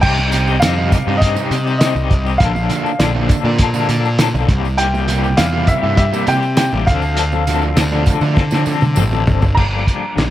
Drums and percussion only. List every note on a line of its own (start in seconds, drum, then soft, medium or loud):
0.02 kick loud
0.02 crash loud
0.18 tambourine soft
0.32 closed hi-hat medium
0.32 tambourine medium
0.47 tambourine soft
0.62 snare loud
0.62 closed hi-hat loud
0.62 tambourine loud
0.92 kick medium
0.92 closed hi-hat medium
0.92 tambourine medium
1.22 kick medium
1.22 closed hi-hat loud
1.36 tambourine medium
1.51 closed hi-hat medium
1.51 tambourine medium
1.67 tambourine soft
1.81 snare loud
1.81 closed hi-hat loud
1.81 tambourine loud
1.96 tambourine soft
2.11 kick medium
2.11 closed hi-hat medium
2.26 tambourine soft
2.40 kick loud
2.40 closed hi-hat loud
2.56 tambourine soft
2.70 closed hi-hat medium
2.70 tambourine medium
2.86 tambourine soft
3.00 snare loud
3.00 closed hi-hat loud
3.00 tambourine loud
3.00 tambourine medium
3.29 kick medium
3.29 closed hi-hat medium
3.29 tambourine medium
3.58 kick medium
3.58 closed hi-hat loud
3.74 tambourine medium
3.89 closed hi-hat medium
3.89 tambourine medium
4.05 tambourine soft
4.19 snare loud
4.19 closed hi-hat loud
4.19 tambourine loud
4.35 tambourine soft
4.49 kick loud
4.49 closed hi-hat medium
4.65 tambourine soft
4.78 closed hi-hat loud
4.95 tambourine soft
5.08 closed hi-hat medium
5.08 tambourine medium
5.24 tambourine soft
5.37 snare loud
5.37 closed hi-hat loud
5.37 tambourine loud
5.37 tambourine medium
5.67 kick medium
5.67 closed hi-hat medium
5.67 tambourine medium
5.97 kick medium
5.97 closed hi-hat loud
6.13 tambourine medium
6.27 closed hi-hat medium
6.27 tambourine medium
6.43 tambourine soft
6.57 snare loud
6.57 closed hi-hat loud
6.57 tambourine loud
6.72 tambourine soft
6.87 kick loud
6.87 closed hi-hat medium
7.02 tambourine soft
7.17 closed hi-hat loud
7.17 tambourine soft
7.32 tambourine soft
7.47 closed hi-hat medium
7.47 tambourine medium
7.62 tambourine soft
7.77 snare loud
7.77 closed hi-hat loud
7.77 tambourine loud
8.06 kick medium
8.06 closed hi-hat medium
8.06 tambourine medium
8.21 tambourine soft
8.36 kick medium
8.36 snare medium
8.36 tambourine soft
8.51 snare medium
8.51 tambourine medium
8.66 tambourine medium
8.81 high tom medium
8.81 tambourine soft
8.96 mid tom loud
8.96 tambourine loud
9.12 tambourine soft
9.27 floor tom loud
9.27 tambourine soft
9.42 floor tom loud
9.42 tambourine soft
9.57 kick loud
9.57 crash medium
9.87 kick medium
9.87 closed hi-hat medium
10.18 snare loud
10.18 closed hi-hat medium
10.18 tambourine loud